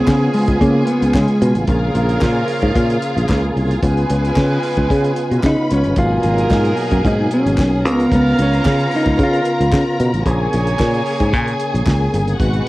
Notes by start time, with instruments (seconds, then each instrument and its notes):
Already playing: tonewheel organ C#3 B3 F4, horn section F3 C#4 G#4, clean electric guitar B3, string section G#4 G#5
0.07 fingered electric bass C#3, kick, snare, clap
0.33 clean electric guitar G#3, open hi-hat
0.48 fingered electric bass C#2, kick, closed hi-hat
0.61 fingered electric bass C#3, clean electric guitar A#3, kick, closed hi-hat
0.87 clean electric guitar B3, closed hi-hat
1.02 fingered electric bass C#2, closed hi-hat
1.14 fingered electric bass C#3, clean electric guitar G#3, kick, snare, clap
1.28 closed hi-hat
1.42 fingered electric bass B2, closed hi-hat
1.55 fingered electric bass A1, closed hi-hat
1.68 fingered electric bass A#1, horn section F3 C#4 A#4, tonewheel organ A#3 G#4, string section F4 F5, kick, closed hi-hat
1.95 fingered electric bass A#1, closed hi-hat
2.09 closed hi-hat
2.21 fingered electric bass A#2, kick, snare, clap
2.48 open hi-hat
2.62 fingered electric bass G#2, kick, closed hi-hat
2.76 fingered electric bass A#2, kick, closed hi-hat
2.90 closed hi-hat
3.02 closed hi-hat
3.17 fingered electric bass A#1, closed hi-hat
3.29 fingered electric bass C#2, kick, snare, clap
3.56 fingered electric bass C2, closed hi-hat
3.71 closed hi-hat
3.82 fingered electric bass C#2, tonewheel organ C#3 B3 F4, horn section G#3 F4 B4, string section G#4 G#5, kick, closed hi-hat
3.97 closed hi-hat
4.10 fingered electric bass C#2, closed hi-hat
4.25 closed hi-hat
4.36 fingered electric bass C#3, kick, snare, clap
4.63 open hi-hat
4.77 fingered electric bass C#2, kick, closed hi-hat
4.90 fingered electric bass C#3, kick, closed hi-hat
5.04 closed hi-hat
5.16 closed hi-hat
5.31 fingered electric bass B2, closed hi-hat
5.43 fingered electric bass C#3, clean electric guitar D#4, string section B4 B5, kick, snare, clap
5.71 fingered electric bass C#2, clean electric guitar C#4, snare, closed hi-hat
5.84 fingered electric bass G1, closed hi-hat
5.96 fingered electric bass G#1, tonewheel organ B2 F#3 A#3, horn section F#3 D#4 A#4, clean electric guitar F4, string section G#4 G#5, kick, closed hi-hat
6.23 fingered electric bass G#1, closed hi-hat
6.38 closed hi-hat
6.51 fingered electric bass G#2, kick, snare, clap
6.65 closed hi-hat
6.77 open hi-hat
6.91 fingered electric bass F#2, kick, closed hi-hat
7.05 fingered electric bass G#2, clean electric guitar D#4, kick, closed hi-hat
7.31 clean electric guitar C#4, closed hi-hat
7.46 fingered electric bass G#1, closed hi-hat
7.58 fingered electric bass B1, kick, snare, clap
7.84 fingered electric bass C#2, tonewheel organ C#3 B3 F4, horn section C#4 B4 F5, string section A#4 A#5, closed hi-hat
7.93 clean electric guitar B3
8.00 closed hi-hat
8.12 fingered electric bass C#2, clean electric guitar B3, kick, closed hi-hat
8.39 fingered electric bass C#2, clean electric guitar C#4, closed hi-hat
8.53 closed hi-hat
8.65 fingered electric bass C#3, kick, snare, clap
8.79 closed hi-hat
8.91 open hi-hat
8.96 clean electric guitar D#4
9.06 fingered electric bass C#2, kick, closed hi-hat
9.19 fingered electric bass C#3, kick, closed hi-hat
9.23 clean electric guitar F4
9.33 closed hi-hat
9.45 closed hi-hat
9.60 fingered electric bass C#2, closed hi-hat
9.72 fingered electric bass C#3, kick, snare, clap
10.00 fingered electric bass B2, closed hi-hat
10.14 fingered electric bass A1, closed hi-hat
10.25 fingered electric bass A#1, tonewheel organ C#3 A#3 G#4, horn section A#3 G#4 C#5, string section G#4 G#5, kick, closed hi-hat
10.53 fingered electric bass A#1, closed hi-hat
10.67 closed hi-hat
10.79 fingered electric bass A#2, kick, snare, clap
10.94 closed hi-hat
11.06 open hi-hat
11.20 fingered electric bass G#2, kick, closed hi-hat
11.33 fingered electric bass A#2, kick, closed hi-hat
11.48 closed hi-hat
11.60 closed hi-hat
11.74 fingered electric bass A#1, closed hi-hat
11.86 fingered electric bass C#2, kick, snare, clap
12.14 fingered electric bass G1, closed hi-hat
12.28 closed hi-hat
12.40 fingered electric bass G#1, tonewheel organ B2 G#3 F#4, horn section G#3 F#4 B4, string section F#4 F#5, kick, closed hi-hat
12.53 closed hi-hat